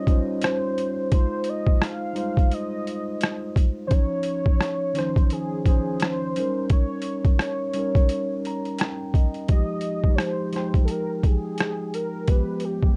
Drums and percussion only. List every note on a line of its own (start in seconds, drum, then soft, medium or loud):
0.07 kick medium
0.07 closed hi-hat soft
0.42 cross-stick loud
0.42 closed hi-hat medium
0.78 closed hi-hat medium
1.12 kick loud
1.12 closed hi-hat medium
1.44 closed hi-hat medium
1.67 kick medium
1.82 cross-stick loud
1.82 closed hi-hat medium
2.16 closed hi-hat medium
2.37 kick loud
2.37 closed hi-hat soft
2.51 closed hi-hat medium
2.87 closed hi-hat medium
3.21 cross-stick loud
3.21 closed hi-hat medium
3.56 kick medium
3.56 closed hi-hat medium
3.91 kick loud
3.91 closed hi-hat medium
4.23 closed hi-hat medium
4.46 kick medium
4.61 cross-stick loud
4.61 closed hi-hat medium
4.95 cross-stick soft
4.95 closed hi-hat medium
5.16 kick loud
5.16 closed hi-hat soft
5.30 closed hi-hat medium
5.66 kick medium
5.66 closed hi-hat medium
6.00 cross-stick loud
6.00 closed hi-hat medium
6.36 closed hi-hat medium
6.70 kick loud
6.70 closed hi-hat medium
7.02 closed hi-hat medium
7.25 kick loud
7.25 closed hi-hat soft
7.39 cross-stick loud
7.39 closed hi-hat medium
7.74 closed hi-hat medium
7.95 kick loud
7.95 closed hi-hat soft
8.09 closed hi-hat medium
8.45 closed hi-hat soft
8.65 closed hi-hat soft
8.78 cross-stick loud
8.78 closed hi-hat medium
9.14 kick medium
9.14 closed hi-hat medium
9.34 closed hi-hat soft
9.48 kick loud
9.48 closed hi-hat medium
9.81 closed hi-hat medium
10.04 kick medium
10.18 cross-stick loud
10.18 closed hi-hat medium
10.52 cross-stick soft
10.52 closed hi-hat medium
10.74 kick medium
10.74 closed hi-hat soft
10.88 closed hi-hat medium
11.23 kick medium
11.23 closed hi-hat soft
11.58 cross-stick loud
11.58 closed hi-hat medium
11.94 closed hi-hat medium
12.28 kick loud
12.28 closed hi-hat medium
12.60 closed hi-hat medium
12.83 kick medium